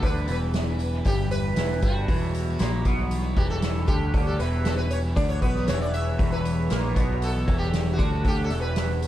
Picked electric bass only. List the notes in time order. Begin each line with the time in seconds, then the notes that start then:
0.03 D2
0.28 E1
1.06 G1
1.57 E1
1.83 G1
2.09 E1
2.60 A#1
2.86 B1
3.37 E1
3.88 D2
4.14 D2
4.40 E1
5.17 D2
5.42 B1
5.69 E1
6.20 E1
6.71 A#1
6.97 B1
7.48 E1
7.99 D2
8.25 D2
8.51 E1